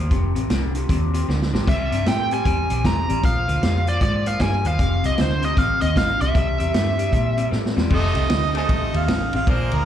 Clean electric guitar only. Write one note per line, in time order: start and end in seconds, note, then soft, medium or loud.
0.11 0.33 F2 medium
0.11 0.33 C3 medium
0.35 0.48 F2 medium
0.35 0.49 C3 medium
0.50 0.72 F2 medium
0.50 0.72 D3 medium
0.75 0.88 F2 medium
0.75 0.88 C3 medium
0.89 1.11 F2 medium
0.89 1.12 C3 medium
1.14 1.27 F2 medium
1.14 1.27 C3 medium
1.28 1.50 F2 medium
1.28 1.51 D3 medium
1.53 1.66 F2 medium
1.53 1.66 C3 medium
1.67 1.89 C3 medium
1.67 1.90 G3 medium
1.92 2.05 C3 medium
1.92 2.05 G3 medium
2.06 2.28 C3 medium
2.06 2.29 A3 medium
2.32 2.44 C3 medium
2.32 2.44 G3 medium
2.46 2.68 C3 medium
2.46 2.68 G3 medium
2.70 2.83 C3 medium
2.70 2.83 G3 medium
2.85 3.07 C3 medium
2.85 3.07 A3 medium
3.09 3.22 C3 medium
3.09 3.22 G3 medium
3.23 3.45 A#2 medium
3.23 3.45 F3 medium
3.48 3.61 A#2 medium
3.48 3.61 F3 medium
3.62 3.84 A#2 medium
3.62 3.85 G3 medium
3.87 4.00 A#2 medium
3.87 4.00 F3 medium
4.01 4.24 A#2 medium
4.01 4.24 F3 medium
4.26 4.39 A#2 medium
4.26 4.39 F3 medium
4.41 4.63 A#2 medium
4.41 4.63 G3 medium
4.65 4.78 A#2 medium
4.65 4.78 F3 medium
4.79 5.01 F2 medium
4.79 5.02 C3 medium
5.04 5.16 F2 medium
5.04 5.17 C3 medium
5.17 5.40 F2 medium
5.17 5.40 D3 medium
5.41 5.55 F2 medium
5.41 5.56 C3 medium
5.56 5.79 F2 medium
5.56 5.79 C3 medium
5.81 5.94 F2 medium
5.81 5.95 C3 medium
5.95 6.18 F2 medium
5.95 6.18 D3 medium
6.20 6.33 F2 medium
6.20 6.33 C3 medium
6.34 6.57 C3 medium
6.34 6.57 G3 medium
6.59 6.72 C3 medium
6.59 6.73 G3 medium
6.73 6.96 C3 medium
6.73 6.96 A3 medium
6.98 7.11 C3 medium
6.98 7.12 G3 medium
7.12 7.35 C3 medium
7.12 7.35 G3 medium
7.37 7.50 C3 medium
7.37 7.51 G3 medium
7.51 7.74 C3 medium
7.51 7.74 A3 medium
7.76 7.89 C3 medium
7.76 7.90 G3 medium
7.90 8.13 F2 medium
7.90 8.13 C3 medium
8.14 8.28 F2 medium
8.14 8.29 C3 medium
8.29 8.52 F2 medium
8.29 8.52 D3 medium
8.54 8.67 F2 medium
8.54 8.67 C3 medium
8.68 8.91 F2 medium
8.68 8.91 C3 medium
8.92 9.06 F2 medium
8.92 9.07 C3 medium
9.08 9.31 F2 medium
9.08 9.31 D3 medium
9.33 9.46 F2 medium
9.33 9.46 C3 medium
9.47 9.69 A#2 medium
9.47 9.70 F3 medium
9.71 9.85 A#2 medium
9.71 9.85 F3 medium